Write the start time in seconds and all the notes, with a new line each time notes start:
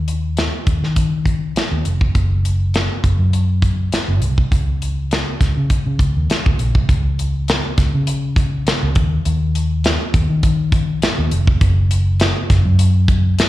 Already playing: D#2
0.08 closed hi-hat
0.37 snare, closed hi-hat
0.67 D#2, kick, closed hi-hat
0.83 D#3, snare
0.96 kick, closed hi-hat
1.26 kick, closed hi-hat
1.56 snare, closed hi-hat
1.72 D#2
1.85 F1, closed hi-hat
2.01 kick
2.15 F#1, kick, closed hi-hat
2.45 closed hi-hat
2.74 snare, closed hi-hat
3.04 F#1, kick, closed hi-hat
3.19 F#2
3.33 closed hi-hat
3.62 kick, closed hi-hat
3.92 snare, closed hi-hat
4.08 F#1
4.22 C2, closed hi-hat
4.38 kick
4.52 C#2, kick, closed hi-hat
4.82 closed hi-hat
5.11 snare, closed hi-hat
5.41 C#2, kick, snare, closed hi-hat
5.57 C#3
5.70 kick, closed hi-hat
5.87 C#3
5.99 C#2, kick, closed hi-hat
6.17 D#2
6.30 snare, closed hi-hat
6.46 C#2, kick
6.59 A#1, closed hi-hat
6.75 C2, kick
6.89 C#2, kick, closed hi-hat
7.19 closed hi-hat
7.48 snare, closed hi-hat
7.78 C#2, kick, snare, closed hi-hat
7.94 C#3
8.07 closed hi-hat
8.36 kick, closed hi-hat
8.67 snare, closed hi-hat
8.83 C#2
8.95 D#2, kick, closed hi-hat
9.25 D#2, closed hi-hat
9.55 closed hi-hat
9.84 snare, closed hi-hat
10.14 D#2, kick, closed hi-hat
10.30 D#3
10.43 kick, closed hi-hat
10.72 kick, closed hi-hat
11.02 snare, closed hi-hat
11.18 D#2
11.31 F1, closed hi-hat
11.47 kick
11.61 F#1, kick, closed hi-hat
11.91 closed hi-hat
12.20 snare, closed hi-hat
12.50 F#1, kick, snare, closed hi-hat
12.65 F#2
12.79 closed hi-hat
13.08 kick, closed hi-hat
13.39 snare, closed hi-hat